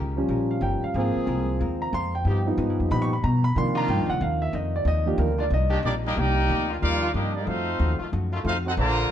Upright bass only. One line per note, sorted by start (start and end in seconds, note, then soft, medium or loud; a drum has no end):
0.00 0.28 C#2 loud
0.29 0.60 A#1 medium
0.61 0.80 G1 medium
0.82 muted upright bass stroke soft
0.94 1.13 G#1 medium
1.15 muted upright bass stroke soft
1.27 1.59 C2 medium
1.61 1.92 D#2 medium
1.93 2.24 F2 medium
2.25 2.57 G2 medium
2.57 2.69 G#2 loud
2.69 2.79 G2 medium
2.80 2.90 F2 medium
2.91 3.22 A#2 loud
3.24 3.55 B2 medium
3.56 3.87 C3 medium
3.88 3.99 G2 loud
3.99 4.09 D#2 medium
4.10 4.20 C2 medium
4.21 4.52 D#2 loud
4.53 4.84 F2 medium
4.85 5.17 D#2 medium
5.18 5.50 D2 loud
5.50 5.82 C2 medium
5.83 6.15 A#1 medium
6.17 6.48 C2 medium
6.49 6.81 D2 medium
6.83 7.14 D#2 medium
7.14 7.46 G2 medium
7.47 7.78 F2 medium
7.79 7.98 D#2 medium
8.00 muted upright bass stroke soft
8.13 8.44 F#2 loud
8.45 8.76 F2 medium
8.77 9.09 A#1 medium